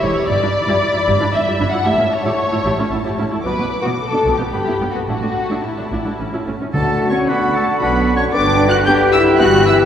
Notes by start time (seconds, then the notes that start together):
0.01 E1 E2 E4 G4 C#5 B5
0.28 G1 G2 E4 G4 D5 B5
0.42 G2 D4 E4
0.68 G2 E4 G4
0.94 G2 E4
1.07 G1 G2 E4 G4
1.21 G2 D4 E4
1.33 G1 G2 E4 E5
1.47 G2 E4 G4
1.60 G1 G2 D4 E4
1.70 G2 E4 F#5
1.85 A1 A2 E4 G4 E5 A5
1.99 A2 C#4 E4
2.12 C#5
2.25 A2 E4 G4
2.52 A2 E4
2.64 A1 A2 E4 G4
2.79 A2 C#4 E4
2.91 A1 A2 E4
3.05 A2 E4 G4
3.18 A1 A2 C#4 E4
3.32 A2 E4
3.44 B1 B2 B3 F#4 B4 D6
3.58 B2 B3
3.82 B2 B3 F#4
3.99 A4
4.12 B2 B3 D4
4.25 B1 B2 B3 F#4
4.36 B2 B3 G4
4.52 G1 G2 B3 G4 B5
4.66 G2 B3 E4
4.80 G1 G2 G3 B3
4.91 G2 B3 F#4
5.08 A1 A2 D4 E4 F#4 A5
5.22 A2 A3 D4
5.49 A2 D4 E4
5.65 E4
5.77 A2 D4
5.90 A1 A2 D4 E4
6.05 A2 A3 D4
6.19 A1 A2 C#4
6.32 A2 C#4 E4
6.47 A1 A2 A3 C#4
6.61 A2 C#4
6.73 D2 D3 A3 F#4 A4 F#5 A5
7.10 C#4 C#5 C#6
7.27 D3 B3 D4 F#4 B4 B5
7.53 A3 A4 A5
7.79 B1 D3 B3 D4 F#4 B4 B5
8.16 C#4 C#5 C#6
8.32 G1 D4 B4 D5 G5 D6
8.69 F#4 F#5 F#6
8.85 G3 B3 D4 G4 G5 G6
9.13 E4 E5 E6
9.38 G1 E3 B3 E4 F#4 G4 F#5 F#6
9.66 E4 E5 E6